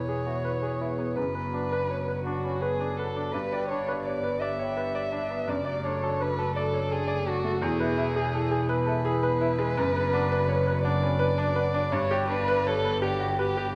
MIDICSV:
0, 0, Header, 1, 6, 480
1, 0, Start_track
1, 0, Tempo, 722022
1, 774, Time_signature, 6, 3, 24, 8
1, 3652, Tempo, 715137
1, 7492, Tempo, 732601
1, 9153, End_track
2, 0, Start_track
2, 0, Title_t, "Marimba"
2, 0, Program_c, 0, 12
2, 54, Note_on_c, 0, 71, 48
2, 126, Note_off_c, 0, 71, 0
2, 175, Note_on_c, 0, 76, 46
2, 247, Note_off_c, 0, 76, 0
2, 295, Note_on_c, 0, 64, 65
2, 367, Note_off_c, 0, 64, 0
2, 534, Note_on_c, 0, 71, 44
2, 606, Note_off_c, 0, 71, 0
2, 655, Note_on_c, 0, 68, 42
2, 727, Note_off_c, 0, 68, 0
2, 779, Note_on_c, 0, 71, 67
2, 849, Note_off_c, 0, 71, 0
2, 899, Note_on_c, 0, 83, 48
2, 970, Note_off_c, 0, 83, 0
2, 1015, Note_on_c, 0, 78, 49
2, 1088, Note_off_c, 0, 78, 0
2, 1135, Note_on_c, 0, 74, 44
2, 1208, Note_off_c, 0, 74, 0
2, 1256, Note_on_c, 0, 71, 63
2, 1329, Note_off_c, 0, 71, 0
2, 1379, Note_on_c, 0, 74, 47
2, 1451, Note_off_c, 0, 74, 0
2, 1498, Note_on_c, 0, 78, 49
2, 1571, Note_off_c, 0, 78, 0
2, 1618, Note_on_c, 0, 83, 51
2, 1691, Note_off_c, 0, 83, 0
2, 1737, Note_on_c, 0, 71, 71
2, 1810, Note_off_c, 0, 71, 0
2, 1980, Note_on_c, 0, 78, 47
2, 2052, Note_off_c, 0, 78, 0
2, 2098, Note_on_c, 0, 74, 47
2, 2170, Note_off_c, 0, 74, 0
2, 2217, Note_on_c, 0, 67, 68
2, 2289, Note_off_c, 0, 67, 0
2, 2336, Note_on_c, 0, 79, 49
2, 2409, Note_off_c, 0, 79, 0
2, 2457, Note_on_c, 0, 74, 53
2, 2529, Note_off_c, 0, 74, 0
2, 2578, Note_on_c, 0, 71, 51
2, 2650, Note_off_c, 0, 71, 0
2, 2696, Note_on_c, 0, 67, 72
2, 2768, Note_off_c, 0, 67, 0
2, 2810, Note_on_c, 0, 71, 50
2, 2883, Note_off_c, 0, 71, 0
2, 2930, Note_on_c, 0, 74, 58
2, 3003, Note_off_c, 0, 74, 0
2, 3050, Note_on_c, 0, 79, 54
2, 3123, Note_off_c, 0, 79, 0
2, 3172, Note_on_c, 0, 67, 75
2, 3244, Note_off_c, 0, 67, 0
2, 3413, Note_on_c, 0, 74, 52
2, 3485, Note_off_c, 0, 74, 0
2, 3534, Note_on_c, 0, 71, 51
2, 3606, Note_off_c, 0, 71, 0
2, 3650, Note_on_c, 0, 62, 82
2, 3723, Note_off_c, 0, 62, 0
2, 3775, Note_on_c, 0, 74, 60
2, 3847, Note_off_c, 0, 74, 0
2, 3897, Note_on_c, 0, 69, 58
2, 3968, Note_off_c, 0, 69, 0
2, 4013, Note_on_c, 0, 66, 56
2, 4086, Note_off_c, 0, 66, 0
2, 4132, Note_on_c, 0, 62, 77
2, 4205, Note_off_c, 0, 62, 0
2, 4256, Note_on_c, 0, 66, 62
2, 4328, Note_off_c, 0, 66, 0
2, 4371, Note_on_c, 0, 69, 62
2, 4444, Note_off_c, 0, 69, 0
2, 4495, Note_on_c, 0, 74, 62
2, 4566, Note_off_c, 0, 74, 0
2, 4613, Note_on_c, 0, 62, 80
2, 4685, Note_off_c, 0, 62, 0
2, 4851, Note_on_c, 0, 69, 58
2, 4922, Note_off_c, 0, 69, 0
2, 4970, Note_on_c, 0, 66, 60
2, 5041, Note_off_c, 0, 66, 0
2, 5086, Note_on_c, 0, 64, 93
2, 5158, Note_off_c, 0, 64, 0
2, 5205, Note_on_c, 0, 76, 63
2, 5277, Note_off_c, 0, 76, 0
2, 5324, Note_on_c, 0, 71, 65
2, 5396, Note_off_c, 0, 71, 0
2, 5441, Note_on_c, 0, 68, 60
2, 5514, Note_off_c, 0, 68, 0
2, 5561, Note_on_c, 0, 64, 91
2, 5634, Note_off_c, 0, 64, 0
2, 5682, Note_on_c, 0, 68, 67
2, 5755, Note_off_c, 0, 68, 0
2, 5801, Note_on_c, 0, 71, 69
2, 5875, Note_off_c, 0, 71, 0
2, 5925, Note_on_c, 0, 76, 72
2, 5998, Note_off_c, 0, 76, 0
2, 6044, Note_on_c, 0, 64, 95
2, 6117, Note_off_c, 0, 64, 0
2, 6283, Note_on_c, 0, 71, 66
2, 6356, Note_off_c, 0, 71, 0
2, 6406, Note_on_c, 0, 68, 64
2, 6478, Note_off_c, 0, 68, 0
2, 6523, Note_on_c, 0, 71, 102
2, 6596, Note_off_c, 0, 71, 0
2, 6644, Note_on_c, 0, 83, 73
2, 6718, Note_off_c, 0, 83, 0
2, 6764, Note_on_c, 0, 78, 78
2, 6837, Note_off_c, 0, 78, 0
2, 6881, Note_on_c, 0, 74, 66
2, 6956, Note_off_c, 0, 74, 0
2, 7004, Note_on_c, 0, 71, 97
2, 7078, Note_off_c, 0, 71, 0
2, 7121, Note_on_c, 0, 74, 68
2, 7196, Note_off_c, 0, 74, 0
2, 7243, Note_on_c, 0, 78, 73
2, 7317, Note_off_c, 0, 78, 0
2, 7365, Note_on_c, 0, 83, 73
2, 7439, Note_off_c, 0, 83, 0
2, 7483, Note_on_c, 0, 71, 105
2, 7556, Note_off_c, 0, 71, 0
2, 7721, Note_on_c, 0, 78, 70
2, 7794, Note_off_c, 0, 78, 0
2, 7841, Note_on_c, 0, 74, 73
2, 7914, Note_off_c, 0, 74, 0
2, 7960, Note_on_c, 0, 67, 97
2, 8033, Note_off_c, 0, 67, 0
2, 8083, Note_on_c, 0, 79, 71
2, 8156, Note_off_c, 0, 79, 0
2, 8198, Note_on_c, 0, 74, 73
2, 8272, Note_off_c, 0, 74, 0
2, 8320, Note_on_c, 0, 71, 72
2, 8394, Note_off_c, 0, 71, 0
2, 8442, Note_on_c, 0, 67, 102
2, 8515, Note_off_c, 0, 67, 0
2, 8561, Note_on_c, 0, 71, 69
2, 8634, Note_off_c, 0, 71, 0
2, 8679, Note_on_c, 0, 74, 70
2, 8753, Note_off_c, 0, 74, 0
2, 8804, Note_on_c, 0, 79, 67
2, 8877, Note_off_c, 0, 79, 0
2, 8922, Note_on_c, 0, 67, 101
2, 8997, Note_off_c, 0, 67, 0
2, 9153, End_track
3, 0, Start_track
3, 0, Title_t, "Violin"
3, 0, Program_c, 1, 40
3, 0, Note_on_c, 1, 73, 57
3, 771, Note_on_c, 1, 71, 57
3, 780, Note_off_c, 1, 73, 0
3, 1485, Note_off_c, 1, 71, 0
3, 1489, Note_on_c, 1, 66, 53
3, 1734, Note_on_c, 1, 68, 61
3, 1744, Note_off_c, 1, 66, 0
3, 1977, Note_on_c, 1, 69, 58
3, 1986, Note_off_c, 1, 68, 0
3, 2206, Note_on_c, 1, 71, 64
3, 2216, Note_off_c, 1, 69, 0
3, 2444, Note_off_c, 1, 71, 0
3, 2448, Note_on_c, 1, 73, 61
3, 2687, Note_off_c, 1, 73, 0
3, 2694, Note_on_c, 1, 74, 66
3, 2930, Note_on_c, 1, 76, 58
3, 2940, Note_off_c, 1, 74, 0
3, 3652, Note_on_c, 1, 74, 69
3, 3662, Note_off_c, 1, 76, 0
3, 3898, Note_on_c, 1, 73, 63
3, 3908, Note_off_c, 1, 74, 0
3, 4139, Note_on_c, 1, 71, 71
3, 4149, Note_off_c, 1, 73, 0
3, 4360, Note_off_c, 1, 71, 0
3, 4364, Note_on_c, 1, 69, 65
3, 4613, Note_on_c, 1, 68, 76
3, 4623, Note_off_c, 1, 69, 0
3, 4855, Note_on_c, 1, 66, 70
3, 4865, Note_off_c, 1, 68, 0
3, 5091, Note_on_c, 1, 68, 70
3, 5101, Note_off_c, 1, 66, 0
3, 5806, Note_on_c, 1, 71, 73
3, 5816, Note_off_c, 1, 68, 0
3, 7232, Note_off_c, 1, 71, 0
3, 7236, Note_on_c, 1, 74, 77
3, 7954, Note_on_c, 1, 73, 86
3, 7964, Note_off_c, 1, 74, 0
3, 8190, Note_off_c, 1, 73, 0
3, 8194, Note_on_c, 1, 71, 82
3, 8446, Note_on_c, 1, 69, 87
3, 8455, Note_off_c, 1, 71, 0
3, 8677, Note_off_c, 1, 69, 0
3, 8681, Note_on_c, 1, 67, 74
3, 8917, Note_off_c, 1, 67, 0
3, 8921, Note_on_c, 1, 67, 79
3, 9153, Note_off_c, 1, 67, 0
3, 9153, End_track
4, 0, Start_track
4, 0, Title_t, "Grand piano"
4, 0, Program_c, 2, 0
4, 0, Control_c, 2, 64, 127
4, 0, Note_on_c, 2, 40, 53
4, 0, Note_on_c, 2, 64, 46
4, 0, Note_on_c, 2, 68, 43
4, 0, Note_on_c, 2, 71, 48
4, 0, Note_on_c, 2, 73, 36
4, 58, Note_off_c, 2, 68, 0
4, 58, Note_on_c, 2, 68, 48
4, 124, Note_off_c, 2, 71, 0
4, 176, Note_on_c, 2, 66, 40
4, 248, Note_off_c, 2, 68, 0
4, 295, Note_off_c, 2, 66, 0
4, 296, Note_on_c, 2, 71, 48
4, 416, Note_on_c, 2, 68, 45
4, 488, Note_off_c, 2, 71, 0
4, 539, Note_off_c, 2, 64, 0
4, 539, Note_on_c, 2, 64, 44
4, 608, Note_off_c, 2, 68, 0
4, 654, Note_on_c, 2, 59, 45
4, 729, Note_off_c, 2, 64, 0
4, 748, Note_off_c, 2, 40, 0
4, 774, Note_off_c, 2, 59, 0
4, 776, Note_on_c, 2, 42, 52
4, 787, Control_c, 2, 64, 0
4, 792, Note_off_c, 2, 73, 0
4, 897, Note_on_c, 2, 71, 48
4, 913, Control_c, 2, 64, 127
4, 1023, Note_on_c, 2, 62, 50
4, 1089, Note_off_c, 2, 71, 0
4, 1146, Note_on_c, 2, 71, 53
4, 1213, Note_off_c, 2, 62, 0
4, 1264, Note_on_c, 2, 73, 39
4, 1335, Note_off_c, 2, 71, 0
4, 1382, Note_off_c, 2, 73, 0
4, 1383, Note_on_c, 2, 71, 45
4, 1503, Note_on_c, 2, 62, 50
4, 1575, Note_off_c, 2, 71, 0
4, 1629, Note_on_c, 2, 61, 43
4, 1694, Note_off_c, 2, 62, 0
4, 1742, Note_on_c, 2, 71, 51
4, 1745, Note_off_c, 2, 61, 0
4, 1864, Note_on_c, 2, 62, 49
4, 1933, Note_off_c, 2, 71, 0
4, 1988, Note_on_c, 2, 71, 49
4, 2053, Note_off_c, 2, 62, 0
4, 2101, Note_on_c, 2, 62, 52
4, 2175, Note_off_c, 2, 71, 0
4, 2193, Note_off_c, 2, 42, 0
4, 2220, Note_off_c, 2, 62, 0
4, 2220, Note_on_c, 2, 43, 54
4, 2232, Control_c, 2, 64, 0
4, 2344, Note_on_c, 2, 74, 49
4, 2359, Control_c, 2, 64, 127
4, 2466, Note_on_c, 2, 62, 51
4, 2533, Note_off_c, 2, 74, 0
4, 2582, Note_on_c, 2, 71, 54
4, 2653, Note_off_c, 2, 62, 0
4, 2696, Note_on_c, 2, 73, 43
4, 2771, Note_off_c, 2, 71, 0
4, 2814, Note_on_c, 2, 71, 53
4, 2816, Note_off_c, 2, 73, 0
4, 2936, Note_on_c, 2, 74, 60
4, 3005, Note_off_c, 2, 71, 0
4, 3052, Note_on_c, 2, 73, 47
4, 3126, Note_off_c, 2, 74, 0
4, 3171, Note_on_c, 2, 71, 52
4, 3172, Note_off_c, 2, 73, 0
4, 3290, Note_on_c, 2, 74, 53
4, 3364, Note_off_c, 2, 71, 0
4, 3405, Note_on_c, 2, 62, 53
4, 3484, Note_off_c, 2, 74, 0
4, 3526, Note_on_c, 2, 59, 55
4, 3601, Note_off_c, 2, 62, 0
4, 3627, Note_off_c, 2, 43, 0
4, 3641, Note_on_c, 2, 42, 62
4, 3650, Note_off_c, 2, 59, 0
4, 3665, Control_c, 2, 64, 0
4, 3757, Note_on_c, 2, 74, 55
4, 3762, Control_c, 2, 64, 127
4, 3887, Note_on_c, 2, 62, 55
4, 3958, Note_off_c, 2, 74, 0
4, 4015, Note_on_c, 2, 69, 57
4, 4083, Note_off_c, 2, 62, 0
4, 4129, Note_on_c, 2, 71, 48
4, 4207, Note_off_c, 2, 69, 0
4, 4251, Note_on_c, 2, 69, 61
4, 4252, Note_off_c, 2, 71, 0
4, 4370, Note_on_c, 2, 74, 63
4, 4445, Note_off_c, 2, 69, 0
4, 4486, Note_on_c, 2, 73, 52
4, 4564, Note_off_c, 2, 74, 0
4, 4605, Note_on_c, 2, 69, 56
4, 4610, Note_off_c, 2, 73, 0
4, 4714, Note_on_c, 2, 74, 59
4, 4800, Note_off_c, 2, 69, 0
4, 4842, Note_on_c, 2, 62, 58
4, 4913, Note_off_c, 2, 74, 0
4, 4961, Note_on_c, 2, 57, 64
4, 5036, Note_off_c, 2, 62, 0
4, 5056, Note_off_c, 2, 42, 0
4, 5075, Note_on_c, 2, 40, 74
4, 5084, Note_off_c, 2, 57, 0
4, 5101, Control_c, 2, 64, 0
4, 5199, Note_on_c, 2, 71, 63
4, 5219, Control_c, 2, 64, 127
4, 5319, Note_on_c, 2, 64, 63
4, 5393, Note_off_c, 2, 71, 0
4, 5443, Note_on_c, 2, 68, 66
4, 5513, Note_off_c, 2, 64, 0
4, 5567, Note_on_c, 2, 69, 52
4, 5635, Note_off_c, 2, 68, 0
4, 5677, Note_on_c, 2, 68, 64
4, 5685, Note_off_c, 2, 69, 0
4, 5798, Note_on_c, 2, 71, 72
4, 5873, Note_off_c, 2, 68, 0
4, 5916, Note_on_c, 2, 69, 55
4, 5994, Note_off_c, 2, 71, 0
4, 6038, Note_on_c, 2, 68, 70
4, 6041, Note_off_c, 2, 69, 0
4, 6160, Note_on_c, 2, 71, 70
4, 6235, Note_off_c, 2, 68, 0
4, 6281, Note_on_c, 2, 64, 68
4, 6356, Note_off_c, 2, 71, 0
4, 6399, Note_on_c, 2, 56, 67
4, 6477, Note_off_c, 2, 64, 0
4, 6494, Note_off_c, 2, 40, 0
4, 6524, Note_off_c, 2, 56, 0
4, 6526, Note_on_c, 2, 42, 80
4, 6541, Control_c, 2, 64, 0
4, 6652, Note_on_c, 2, 71, 73
4, 6669, Control_c, 2, 64, 127
4, 6767, Note_on_c, 2, 62, 74
4, 6843, Note_off_c, 2, 71, 0
4, 6891, Note_on_c, 2, 71, 78
4, 6961, Note_off_c, 2, 62, 0
4, 7003, Note_on_c, 2, 73, 54
4, 7083, Note_off_c, 2, 71, 0
4, 7127, Note_off_c, 2, 73, 0
4, 7127, Note_on_c, 2, 71, 67
4, 7246, Note_on_c, 2, 62, 73
4, 7321, Note_off_c, 2, 71, 0
4, 7365, Note_on_c, 2, 61, 61
4, 7441, Note_off_c, 2, 62, 0
4, 7477, Note_on_c, 2, 71, 79
4, 7489, Note_off_c, 2, 61, 0
4, 7600, Note_on_c, 2, 62, 76
4, 7673, Note_off_c, 2, 71, 0
4, 7716, Note_on_c, 2, 71, 74
4, 7794, Note_off_c, 2, 62, 0
4, 7837, Note_on_c, 2, 62, 76
4, 7912, Note_off_c, 2, 71, 0
4, 7938, Note_off_c, 2, 42, 0
4, 7955, Note_on_c, 2, 43, 82
4, 7961, Note_off_c, 2, 62, 0
4, 7977, Control_c, 2, 64, 0
4, 8078, Note_on_c, 2, 67, 71
4, 8080, Control_c, 2, 64, 127
4, 8199, Note_on_c, 2, 62, 70
4, 8274, Note_off_c, 2, 67, 0
4, 8321, Note_on_c, 2, 71, 79
4, 8394, Note_off_c, 2, 62, 0
4, 8442, Note_on_c, 2, 73, 57
4, 8515, Note_off_c, 2, 71, 0
4, 8562, Note_on_c, 2, 71, 63
4, 8563, Note_off_c, 2, 73, 0
4, 8675, Note_on_c, 2, 67, 72
4, 8756, Note_off_c, 2, 71, 0
4, 8793, Note_on_c, 2, 66, 55
4, 8873, Note_off_c, 2, 67, 0
4, 8916, Note_on_c, 2, 71, 70
4, 8921, Note_off_c, 2, 66, 0
4, 9037, Note_on_c, 2, 67, 67
4, 9118, Note_off_c, 2, 71, 0
4, 9153, Note_off_c, 2, 43, 0
4, 9153, Note_off_c, 2, 67, 0
4, 9153, End_track
5, 0, Start_track
5, 0, Title_t, "Analog synth pad"
5, 0, Program_c, 3, 89
5, 0, Note_on_c, 3, 59, 60
5, 0, Note_on_c, 3, 68, 61
5, 0, Note_on_c, 3, 71, 60
5, 749, Note_off_c, 3, 71, 0
5, 750, Note_off_c, 3, 68, 0
5, 774, Note_on_c, 3, 66, 65
5, 777, Note_on_c, 3, 62, 66
5, 2194, Note_off_c, 3, 59, 0
5, 2209, Note_on_c, 3, 59, 68
5, 2210, Note_on_c, 3, 67, 67
5, 2219, Note_off_c, 3, 66, 0
5, 3622, Note_off_c, 3, 59, 0
5, 3646, Note_off_c, 3, 62, 0
5, 3649, Note_off_c, 3, 67, 0
5, 3650, Note_on_c, 3, 66, 69
5, 3653, Note_on_c, 3, 57, 67
5, 3654, Note_on_c, 3, 62, 72
5, 5062, Note_off_c, 3, 62, 0
5, 5087, Note_off_c, 3, 66, 0
5, 5089, Note_off_c, 3, 57, 0
5, 5094, Note_on_c, 3, 59, 72
5, 5094, Note_on_c, 3, 68, 74
5, 5096, Note_on_c, 3, 76, 70
5, 6530, Note_off_c, 3, 68, 0
5, 6531, Note_off_c, 3, 76, 0
5, 6531, Note_on_c, 3, 66, 75
5, 6532, Note_on_c, 3, 62, 79
5, 7961, Note_off_c, 3, 59, 0
5, 7967, Note_off_c, 3, 66, 0
5, 7969, Note_on_c, 3, 55, 80
5, 7969, Note_on_c, 3, 59, 77
5, 9153, Note_off_c, 3, 55, 0
5, 9153, Note_off_c, 3, 59, 0
5, 9153, Note_off_c, 3, 62, 0
5, 9153, End_track
6, 0, Start_track
6, 0, Title_t, "Double bass"
6, 0, Program_c, 4, 43
6, 0, Note_on_c, 4, 28, 53
6, 772, Note_on_c, 4, 30, 55
6, 782, Note_off_c, 4, 28, 0
6, 2218, Note_on_c, 4, 31, 57
6, 2228, Note_off_c, 4, 30, 0
6, 3655, Note_on_c, 4, 30, 62
6, 3665, Note_off_c, 4, 31, 0
6, 5089, Note_on_c, 4, 28, 73
6, 5099, Note_off_c, 4, 30, 0
6, 6528, Note_on_c, 4, 30, 83
6, 6539, Note_off_c, 4, 28, 0
6, 7960, Note_on_c, 4, 31, 84
6, 7970, Note_off_c, 4, 30, 0
6, 9153, Note_off_c, 4, 31, 0
6, 9153, End_track
0, 0, End_of_file